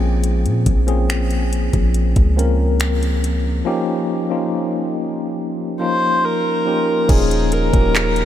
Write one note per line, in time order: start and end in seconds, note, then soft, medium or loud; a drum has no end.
0.00 0.47 A#1 loud
0.00 0.71 F3 medium
0.00 0.71 A#3 medium
0.00 0.71 C4 medium
0.00 0.71 C#4 medium
0.00 0.72 G#4 loud
0.24 closed hi-hat medium
0.45 0.65 A#2 medium
0.45 closed hi-hat soft
0.66 1.70 A#1 medium
0.66 kick medium
0.66 closed hi-hat medium
0.87 2.14 F3 medium
0.87 2.14 A#3 medium
0.87 2.15 C4 medium
0.87 2.15 C#4 medium
0.87 2.15 G#4 medium
0.87 closed hi-hat soft
1.10 finger snap loud
1.10 closed hi-hat medium
1.31 closed hi-hat soft
1.53 closed hi-hat medium
1.73 2.15 A#1 loud
1.73 kick medium
1.73 closed hi-hat soft
1.94 closed hi-hat medium
2.16 3.62 C#2 loud
2.16 kick medium
2.16 closed hi-hat soft
2.37 3.46 F3 medium
2.37 3.46 A#3 medium
2.37 3.46 C4 medium
2.37 3.47 C#4 medium
2.37 3.47 A#4 medium
2.37 closed hi-hat medium
2.80 finger snap loud
2.80 closed hi-hat medium
3.03 closed hi-hat soft
3.24 closed hi-hat medium
3.65 4.20 F3 loud
3.65 4.20 A#3 medium
3.65 4.21 C#4 loud
3.65 4.21 D#4 loud
3.65 4.21 G4 loud
4.29 5.57 F3 medium
4.29 5.57 A#3 medium
4.29 5.57 C#4 medium
4.29 5.58 D#4 medium
4.29 5.58 F4 medium
5.79 6.53 F3 medium
5.79 6.53 A#3 medium
5.79 6.53 C#4 medium
5.79 6.53 D#4 medium
5.79 6.53 F4 medium
5.79 6.26 C5 medium
6.24 7.11 A#4 medium
6.65 7.02 F3 medium
6.65 7.02 A#3 medium
6.65 7.03 C#4 medium
6.65 7.03 D#4 medium
6.65 7.03 G4 medium
7.08 7.71 D#1 loud
7.08 7.63 F3 loud
7.08 7.63 A#3 medium
7.08 7.63 C#4 medium
7.08 7.64 D#4 medium
7.08 7.54 G#4 medium
7.08 7.64 G#4 loud
7.08 kick loud
7.08 closed hi-hat medium
7.08 crash loud
7.31 closed hi-hat medium
7.52 8.25 A#4 medium
7.52 closed hi-hat medium
7.72 8.25 D#1 loud
7.72 8.25 F3 medium
7.72 8.25 A#3 medium
7.72 8.25 C#4 medium
7.72 8.25 D#4 medium
7.72 7.80 F#4 medium
7.72 kick loud
7.72 closed hi-hat medium
7.81 8.25 G4 medium
7.95 8.25 C#4 medium
7.95 clap loud
7.95 closed hi-hat medium
8.16 closed hi-hat soft